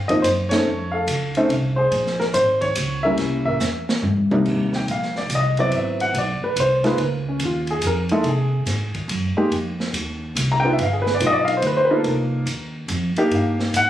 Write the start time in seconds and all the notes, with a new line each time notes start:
0.08 F3 A#3 C4 D#4 D#5, kick, ride
0.22 F#2 C5, hi-hat pedal, ride
0.49 A3 C4 C#4 D#4 A4 C#5, snare, ride
0.65 F2
0.92 A4 F5
1.07 C#2, hi-hat pedal, ride
1.35 A3 C4 C#4 D#4, ride
1.49 C2, ride
1.76 G#4 C5
1.91 A#1, ride
2.07 snare
2.20 A#4, snare
2.34 G#1 C5, hi-hat pedal, ride
2.61 C#5, kick, ride
2.75 C#2, hi-hat pedal, ride
3.03 G3 A#3 C#4 E4 A#4 E5
3.18 C2, snare, ride
3.45 A#4 E5, kick
3.60 E2, snare, hi-hat pedal
3.89 snare
4.02 G2, high tom
4.16 E2
4.30 C2 C3 G3 A#3 D4 D#4, high tom
4.45 D#2, kick, crash
4.73 G5, snare
4.87 A#1, hi-hat pedal, ride
4.91 F5
5.03 snare
5.16 D5, snare
5.29 C2, hi-hat pedal, ride
5.35 D#5
5.57 F#3 B3 C4 E4 D5, ride
5.71 G#1, ride
5.76 E5
6.00 F#5, ride
6.13 B1, ride
6.18 D5
6.42 B4, muted upright bass stroke
6.56 C2, hi-hat pedal, ride
6.60 C5
6.84 G#3 A#3 D#4 F4 B4, snare, ride
6.98 C#2, ride
7.03 A#4
7.29 C#4
7.39 D#2, hi-hat pedal, ride
7.45 F4
7.67 G#4, ride
7.82 F2, hi-hat pedal, ride
7.87 A#4
8.09 G#3 A#3 D#4 E4 A4, ride
8.23 C3, ride
8.29 G#4
8.65 G#2, snare, hi-hat pedal, ride
8.94 muted upright bass stroke, kick, ride
9.08 F#2, ride
9.36 G#3 A#3 D#4 G4, muted upright bass stroke
9.50 F2, ride
9.80 snare
9.93 D#2, hi-hat pedal, ride
10.35 C2, hi-hat pedal, ride
10.52 A#5
10.60 G5
10.65 B3 D4 D#4 F4
10.73 E5
10.78 G1, ride
10.83 F5
10.93 G#4
11.02 B4
11.06 snare
11.15 D5
11.20 B1 B3 D4 D#4 F4, hi-hat pedal, ride
11.27 D#5
11.33 D5
11.40 D#5
11.45 F5, ride
11.57 C5
11.62 D2, ride
11.67 B4
11.77 C5
11.85 B4
11.90 A#3 D4 D#4 F4
11.96 A4
12.04 C2 A#4, ride
12.45 D#2, hi-hat pedal, ride
12.88 F2, hi-hat pedal, ride
13.16 A#3 D4 D#4 G4, muted upright bass stroke, ride
13.30 G2, ride
13.35 F5
13.59 snare
13.73 G#2 F#5, hi-hat pedal, ride